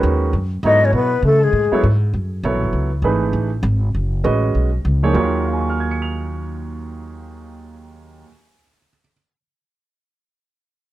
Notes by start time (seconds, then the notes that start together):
Already playing: D#3 G#3 C#4 F#4 B4
0.03 D#2
0.33 F#2
0.63 G#2 F#3 B3 D#4 E4 A4 C#5 D#5
0.82 C#4 C#5
0.93 B2 B3 B4
1.22 C#3 A3
1.27 A4
1.42 G#3 G#4
1.53 A2
1.72 F#3 B3 E4 A4 C#5, muted upright bass stroke
1.83 G#2
2.13 F#2
2.43 B1 F#3 B3 E4 A4 C#5
2.54 A1
2.63 F#1
2.73 C#2
3.02 G#1 E3 A3 D#4 G#4 B4
3.33 A1
3.63 G#1
3.94 F#1
4.24 A1 G#3 C#4 F#4 B4 D#5
4.55 B1
4.85 C#2
5.03 F3 A#3 D#4 G#4 C#5
5.13 D#2 D#3 F#3 F4 G#4 C#5
5.46 F5
5.53 G#5
5.60 C#6
5.69 F6
5.80 G#6
5.91 C#7
6.02 F7